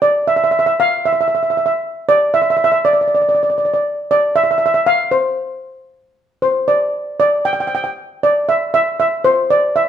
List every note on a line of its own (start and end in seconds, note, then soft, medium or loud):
0.02 0.13 D5 medium
0.28 0.35 E5 medium
0.36 0.43 E5 medium
0.44 0.50 E5 medium
0.51 0.58 E5 medium
0.59 0.65 E5 medium
0.66 0.73 E5 medium
0.80 1.05 F5 loud
1.06 1.11 E5 medium
1.13 1.19 E5 medium
1.21 1.27 E5 medium
1.28 1.34 E5 medium
1.35 1.42 E5 medium
1.43 1.49 E5 medium
1.50 1.56 E5 medium
1.57 1.64 E5 medium
1.66 1.72 E5 medium
2.09 2.34 D5 loud
2.34 2.41 E5 loud
2.42 2.49 E5 medium
2.50 2.56 E5 medium
2.57 2.63 E5 medium
2.64 2.70 E5 medium
2.72 2.78 E5 medium
2.85 2.92 D5 medium
2.93 3.00 D5 medium
3.01 3.06 D5 medium
3.08 3.13 D5 medium
3.15 3.21 D5 medium
3.22 3.28 D5 medium
3.29 3.34 D5 medium
3.35 3.42 D5 medium
3.43 3.49 D5 medium
3.50 3.57 D5 medium
3.58 3.64 D5 medium
3.65 3.72 D5 medium
3.74 3.80 D5 medium
4.11 4.38 D5 medium
4.36 4.42 E5 loud
4.44 4.50 E5 medium
4.51 4.57 E5 medium
4.58 4.65 E5 medium
4.66 4.73 E5 medium
4.74 4.82 E5 medium
4.86 5.14 F5 loud
5.11 5.85 C5 medium
6.42 6.68 C5 medium
6.68 7.18 D5 medium
7.20 7.46 D5 loud
7.45 7.52 G5 loud
7.53 7.59 G5 medium
7.60 7.66 G5 medium
7.67 7.74 G5 medium
7.75 7.82 G5 medium
7.84 7.90 G5 medium
8.23 8.49 D5 medium
8.49 8.73 E5 medium
8.74 8.98 E5 loud
9.00 9.11 E5 medium
9.24 9.50 C5 loud
9.50 9.76 D5 loud
9.76 9.89 E5 medium